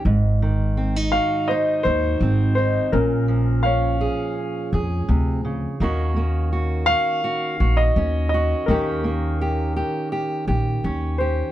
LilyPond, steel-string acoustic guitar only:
\new Staff \with { instrumentName = "Steel-string acoustic guitar" } { \time 4/4 \key ees \dorian \tempo 4 = 84 << { r4 c'16 ees'16 ges'8 ees'8 ges'8 c'8 ees'8 | r4 des'8 aes'4 aes'4. | <bes des' ges'>4 ges'8 ges'8 ges'8 ges'8 des'8 ges'8 | <bes des' g'>4 g'8 g'8 g'8 g'8 des'8 g'8 | } \\ { <aes, ees>8 ees2.~ ees8 | bes,8 f2~ f8 c8 des8 | ees8 bes2.~ bes8 | ees8 bes2.~ bes8 | } >> }